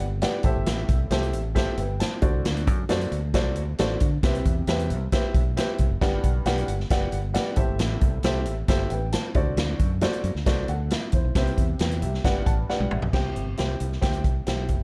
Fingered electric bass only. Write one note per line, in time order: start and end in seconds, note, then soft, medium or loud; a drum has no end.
0.00 0.24 G1 medium
0.44 0.52 A1 medium
0.56 0.64 G1 loud
0.67 0.83 A1 loud
0.89 1.05 C2 medium
1.11 1.33 C2 loud
1.33 1.65 A1 medium
1.78 2.02 G1 medium
2.22 2.30 D2 loud
2.34 2.42 C2 loud
2.45 2.67 D2 loud
2.67 2.83 F#2 medium
2.89 3.05 F#2 loud
3.12 3.36 D2 loud
3.34 3.57 C2 medium
3.57 3.73 D2 medium
3.79 3.95 A1 medium
4.01 4.17 D3 loud
4.23 4.39 C2 loud
4.45 4.61 E2 medium
4.67 4.92 E2 loud
4.90 5.06 C2 medium
5.24 muted fingered electric bass stroke soft
5.34 5.58 B1 medium
5.80 5.87 C2 medium
5.90 5.98 F#1 medium
6.01 6.17 G1 medium
6.24 6.40 B1 medium
6.45 6.62 B1 loud
6.68 6.84 G1 medium
6.90 7.06 F#1 medium
7.12 7.37 G1 medium
7.57 7.65 A1 medium
7.68 7.76 G1 medium
7.79 7.95 A1 loud
8.02 8.18 C2 loud
8.23 8.46 C2 medium
8.46 8.62 A1 loud
8.68 8.84 G1 medium
8.90 9.15 A1 medium
9.35 9.43 D2 loud
9.46 9.54 C2 medium
9.57 9.73 D2 loud
9.80 10.04 F#2 medium
10.24 10.32 F#2 loud
10.35 10.43 D2 medium
10.46 10.62 C2 medium
10.68 10.92 D2 medium
11.13 11.21 E2 medium
11.24 11.32 B1 loud
11.36 11.51 C2 medium
11.57 11.73 E2 medium
11.80 12.04 E2 loud
12.02 12.18 C2 medium
12.24 12.40 G1 medium
12.47 12.63 A1 medium
12.80 12.88 B1 medium
12.91 12.99 A1 medium
13.03 13.11 B1 medium
13.13 13.29 C2 medium
13.37 13.52 G1 medium
13.59 13.75 C2 medium
13.81 13.96 C2 loud
14.02 14.26 D2 medium
14.24 14.40 C2 medium
14.47 14.71 B1 medium
14.69 14.83 F#1 medium